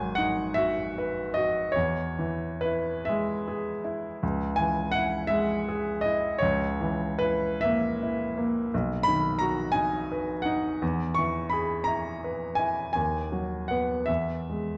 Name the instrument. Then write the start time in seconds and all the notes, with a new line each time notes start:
grand piano
Already playing: G#1 F#3 G#5
0.15 D#4 F#5
0.54 F#4 E5
0.98 B4
1.34 F#4 D#5
1.72 E2 C#5
2.19 E3
2.61 B4
2.65 E4
3.05 G#3 E5
3.48 G#4
3.84 E4
4.23 C#2
4.56 E3 G#5
4.92 E4 F#5
5.27 G#3 E5
5.68 G#4
6.01 D#5
6.05 E4
6.38 C#2 C#5
6.81 E3
7.19 E4 B4
7.61 A#3 E5
8.03 E4
8.38 A#3
8.74 B1
9.03 B5
9.08 D#3
9.39 F#4 A#5
9.72 D#4 G#5
10.12 B4
10.42 D#4 F#5
10.82 E2
11.15 E3 C#6
11.50 G#4 B5
11.84 E4 A#5
12.24 B4
12.55 E4 G#5
12.93 D#2 G#5
13.32 F#3
13.68 B3 B4 F#5
14.06 E2 E5
14.50 G#3